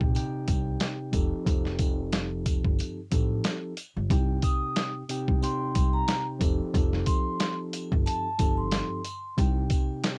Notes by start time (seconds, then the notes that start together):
Already playing: C3 C4 D#4 G4 G5
0.01 A#1, kick
0.14 C3 C4 D#4 G4 G5, closed hi-hat, sleigh bells
0.48 C2, kick, closed hi-hat, sleigh bells
0.80 snare, closed hi-hat, sleigh bells
1.12 F1 F3 C4 D#4 G4 A4, kick, closed hi-hat, sleigh bells
1.45 F1 F3 C4 D#4 G4 A4, kick, closed hi-hat, sleigh bells
1.65 snare
1.79 kick, closed hi-hat, sleigh bells
2.12 snare, closed hi-hat, sleigh bells
2.46 kick, closed hi-hat, sleigh bells
2.64 G1, kick
2.79 closed hi-hat, sleigh bells
3.11 A1 F3 C4 D#4 G4 A4, kick, closed hi-hat, sleigh bells
3.44 snare, closed hi-hat, sleigh bells
3.77 closed hi-hat, sleigh bells
3.97 G1
4.10 C2 C3 C4 D#4 G4 G5, kick, closed hi-hat, sleigh bells
4.43 D#6, kick, closed hi-hat, sleigh bells
4.76 snare, closed hi-hat, sleigh bells
5.09 C3 C4 D#4 G4 G5, closed hi-hat, sleigh bells
5.28 C2, kick
5.41 C3 C4 D#4 G4 G5 C6, closed hi-hat, sleigh bells
5.75 C2, kick, closed hi-hat, sleigh bells
5.93 A#5
6.08 snare, closed hi-hat, sleigh bells
6.39 F1 F3 C4 D#4 G4 A4, kick, closed hi-hat, sleigh bells
6.73 F1 F3 C4 D#4 G4 A4, kick, closed hi-hat, sleigh bells
6.93 snare
7.06 C6, kick, closed hi-hat, sleigh bells
7.40 snare, closed hi-hat, sleigh bells
7.73 closed hi-hat, sleigh bells
7.92 G1, kick
8.06 A5, closed hi-hat, sleigh bells
8.38 G1 F3 C4 D#4 G4 A4, kick, closed hi-hat, sleigh bells
8.57 C6
8.71 snare, closed hi-hat, sleigh bells
9.04 closed hi-hat, sleigh bells
9.37 C2 C3 C4 D#4 G4 G5, kick, closed hi-hat, sleigh bells
9.70 kick, closed hi-hat, sleigh bells
10.04 snare, closed hi-hat, sleigh bells